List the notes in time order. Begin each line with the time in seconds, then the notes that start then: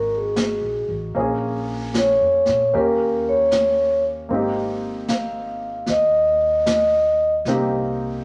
Already playing: G#1 A#3 D#4 F#4 G#4 A#4
0.17 G#4
0.36 snare, hi-hat pedal
0.61 A#1
0.89 A1
1.15 A#1 A#3 C#4 F4, brush sweep
1.19 G#4
1.94 C#5, snare, hi-hat pedal
2.21 F2
2.46 A#2, snare
2.73 D#2 A#3 C#4 F4 G4, brush sweep
2.77 A#4
3.29 C#5
3.51 snare, hi-hat pedal
4.29 G#1 A#3 C4 D#4, brush sweep
4.34 G4
5.08 F5, snare, hi-hat pedal
5.86 D#2 D#5, brush sweep, snare
6.66 snare, hi-hat pedal
6.73 D#5
7.45 C2 A#3 C4 D#4, brush sweep, snare
7.49 G4